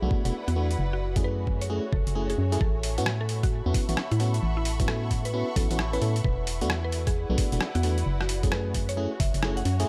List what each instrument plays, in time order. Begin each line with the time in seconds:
Already playing: string section E4 B4 F#5, ambient pad D5 F#5 B5
0.02 fm bass B1, fm electric piano A3 B3 D4 F#4
0.11 kick
0.25 fm bass E1, fm electric piano A3 B3 D4 F#4, closed hi-hat
0.48 fm bass E2, synth pluck F#4, closed hi-hat
0.56 fm electric piano A3 B3 D4 F#4
0.71 closed hi-hat
0.79 fm bass F#1, string section F#4, ambient pad E5 G#5 C#6
0.93 synth pluck F#4
1.16 fm bass F#2, fm electric piano A3 C#4 E4 G#4, kick, closed hi-hat
1.24 synth pluck B4
1.47 kick
1.55 string section C#5
1.61 synth pluck C#5, closed hi-hat
1.70 fm electric piano A3 C#4 E4 G#4
1.92 fm bass F#1, synth pluck A4, kick
2.07 fm bass F#1, closed hi-hat
2.15 fm electric piano A3 C#4 E4 G#4
2.30 synth pluck G#4, closed hi-hat
2.38 fm bass F#2
2.52 fm electric piano A3 C#4 E4 G#4, closed hi-hat
2.61 fm bass A1, string section A4, synth pluck A4, ambient pad E5 F#5 B5 C#6, kick
2.83 string section E5, open hi-hat
2.90 string section B5
2.98 fm bass A2, fm electric piano B3 C#4 E4 F#4, closed hi-hat
3.06 cross-stick
3.21 synth pluck A4
3.29 open hi-hat
3.43 synth pluck F#4, string section C#6, kick, closed hi-hat
3.66 fm bass E2, fm electric piano B3 C#4 E4 F#4
3.74 kick, open hi-hat
3.89 fm bass A1, fm electric piano B3 C#4 E4 F#4, closed hi-hat
3.97 cross-stick
4.11 fm bass A2, synth pluck E4, closed hi-hat
4.20 fm electric piano B3 C#4 E4 F#4, open hi-hat
4.34 closed hi-hat
4.43 fm bass A1
4.57 synth pluck E4
4.65 open hi-hat
4.80 fm bass A2, fm electric piano B3 C#4 E4 F#4, kick, closed hi-hat
4.88 synth pluck A4, cross-stick
5.11 kick, open hi-hat
5.25 synth pluck B4, closed hi-hat
5.34 fm electric piano B3 C#4 E4 F#4
5.56 fm bass A1, fm electric piano B3 C#4 E4 F#4, synth pluck A4, kick, open hi-hat
5.71 fm bass A1, fm electric piano B3 C#4 E4 F#4, closed hi-hat
5.79 cross-stick
5.93 fm electric piano B3 C#4 E4 B4, synth pluck B4, closed hi-hat
6.02 fm bass A2, fm electric piano B3 C#4 E4 A4, open hi-hat
6.16 closed hi-hat
6.24 fm bass E1, string section E4, synth pluck B4, ambient pad D5 B5, kick
6.34 string section B4
6.47 open hi-hat
6.61 fm bass E2, fm electric piano A3 B3 D4 F#4, closed hi-hat
6.70 cross-stick
6.84 synth pluck B4
6.92 open hi-hat
7.07 synth pluck G#4, string section F#5, kick, closed hi-hat
7.30 fm bass B1, fm electric piano A3 B3 D4 F#4
7.38 kick, open hi-hat
7.52 fm bass E1, fm electric piano A3 B3 D4 F#4, closed hi-hat
7.61 cross-stick
7.75 fm bass E2, synth pluck F#4, closed hi-hat
7.83 fm electric piano A3 B3 D4 F#4, open hi-hat
7.98 closed hi-hat
8.06 fm bass F#1, string section F#4, ambient pad E5 G#5 C#6
8.21 synth pluck F#4, cross-stick
8.29 open hi-hat
8.43 fm bass F#2, fm electric piano A3 C#4 E4 G#4, kick, closed hi-hat
8.52 synth pluck B4, cross-stick
8.74 kick, open hi-hat
8.89 synth pluck C#5, string section C#5, closed hi-hat
8.97 fm electric piano A3 C#4 E4 G#4
9.20 fm bass F#1, synth pluck E5, kick, open hi-hat
9.34 fm bass F#1, closed hi-hat
9.43 fm electric piano A3 C#4 E4 G#4, cross-stick
9.57 synth pluck F#5, closed hi-hat
9.65 fm bass F#2, open hi-hat
9.80 fm electric piano A3 C#4 E4 G#4, closed hi-hat